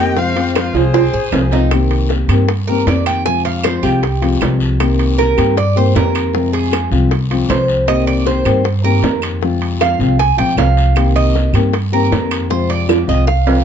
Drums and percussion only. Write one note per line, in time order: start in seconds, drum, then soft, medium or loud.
0.17 high bongo medium
0.17 long guiro medium
0.36 high bongo soft
0.36 high timbale medium
0.55 high bongo medium
0.55 high timbale medium
0.55 low timbale medium
0.55 short guiro medium
0.55 claves medium
0.75 high bongo soft
0.75 high timbale medium
0.75 short guiro medium
0.94 high bongo medium
0.94 high timbale medium
0.94 long guiro medium
1.14 high bongo soft
1.32 high bongo soft
1.32 low bongo medium
1.32 low timbale medium
1.32 short guiro medium
1.32 claves medium
1.51 low timbale medium
1.51 short guiro medium
1.71 high bongo medium
1.71 high timbale loud
1.71 long guiro medium
1.71 claves medium
1.91 high bongo soft
1.91 high timbale medium
2.09 high bongo medium
2.09 low timbale medium
2.09 short guiro medium
2.29 high bongo soft
2.29 high timbale medium
2.29 short guiro medium
2.29 claves medium
2.48 high bongo medium
2.48 high timbale medium
2.48 long guiro medium
2.68 high bongo soft
2.87 high bongo soft
2.87 low bongo medium
2.87 high timbale medium
2.87 low timbale medium
2.87 short guiro medium
3.06 high timbale medium
3.06 short guiro medium
3.06 claves medium
3.26 high bongo medium
3.26 long guiro medium
3.45 high bongo soft
3.45 high timbale medium
3.64 high bongo medium
3.64 high timbale loud
3.64 low timbale medium
3.64 short guiro medium
3.64 claves medium
3.84 high bongo soft
3.84 short guiro medium
4.03 high bongo medium
4.03 high timbale medium
4.03 long guiro medium
4.22 high bongo soft
4.22 high timbale medium
4.41 high bongo soft
4.41 low bongo medium
4.41 high timbale medium
4.41 low timbale medium
4.41 short guiro medium
4.41 claves medium
4.60 short guiro medium
4.80 high bongo medium
4.80 high timbale medium
4.80 long guiro medium
4.80 claves medium
4.99 high bongo soft
4.99 high timbale medium
5.19 high bongo medium
5.19 low timbale medium
5.19 short guiro medium
5.38 high bongo soft
5.38 high timbale medium
5.38 short guiro medium
5.38 claves medium
5.57 high bongo medium
5.57 high timbale medium
5.57 long guiro medium
5.77 high bongo soft
5.95 high bongo soft
5.95 low bongo medium
5.95 high timbale medium
5.95 low timbale medium
5.95 short guiro medium
6.15 high timbale medium
6.15 short guiro medium
6.15 claves medium
6.33 high bongo medium
6.33 long guiro medium
6.54 high bongo soft
6.54 high timbale medium
6.71 high bongo medium
6.71 high timbale loud
6.71 low timbale medium
6.71 short guiro medium
6.71 claves medium
6.92 high bongo soft
6.92 short guiro medium
7.11 high bongo medium
7.11 high timbale medium
7.11 long guiro medium
7.31 high bongo soft
7.31 high timbale medium
7.49 high bongo soft
7.49 low bongo medium
7.49 high timbale medium
7.49 low timbale medium
7.49 short guiro medium
7.49 claves medium
7.68 short guiro medium
7.87 high bongo medium
7.87 high timbale loud
7.87 long guiro medium
7.87 claves medium
8.07 high bongo soft
8.07 high timbale medium
8.26 high bongo medium
8.26 low timbale medium
8.26 short guiro medium
8.45 high bongo soft
8.45 high timbale medium
8.45 short guiro medium
8.45 claves medium
8.64 high bongo medium
8.64 high timbale medium
8.64 long guiro medium
8.85 high bongo soft
9.03 high bongo soft
9.03 low bongo medium
9.03 high timbale medium
9.03 low timbale medium
9.03 short guiro medium
9.22 high timbale medium
9.22 short guiro medium
9.22 claves medium
9.41 high bongo medium
9.41 long guiro medium
9.62 high bongo soft
9.62 high timbale medium
9.81 high bongo medium
9.81 high timbale medium
9.81 low timbale medium
9.81 short guiro medium
9.81 claves medium
10.00 high bongo soft
10.00 short guiro medium
10.19 high bongo medium
10.19 high timbale medium
10.19 long guiro medium
10.39 high bongo soft
10.39 high timbale medium
10.57 high bongo soft
10.57 low bongo medium
10.57 high timbale medium
10.57 low timbale medium
10.57 short guiro medium
10.57 claves medium
10.77 short guiro medium
10.96 high bongo medium
10.96 high timbale loud
10.96 long guiro medium
10.96 claves medium
11.16 high bongo soft
11.16 high timbale medium
11.35 high bongo medium
11.35 low timbale medium
11.35 short guiro medium
11.54 high bongo soft
11.54 high timbale medium
11.54 short guiro medium
11.54 claves medium
11.73 high bongo medium
11.73 high timbale medium
11.73 long guiro medium
11.93 high bongo soft
12.12 high bongo soft
12.12 low bongo loud
12.12 high timbale medium
12.12 low timbale medium
12.12 short guiro medium
12.31 high timbale loud
12.31 short guiro medium
12.31 claves medium
12.51 high bongo medium
12.51 long guiro medium
12.70 high bongo soft
12.70 high timbale medium
12.89 high bongo medium
12.89 high timbale loud
12.89 short guiro medium
12.89 claves medium
13.09 high bongo soft
13.09 short guiro medium
13.28 high bongo medium
13.28 long guiro medium
13.47 high bongo soft
13.47 low timbale loud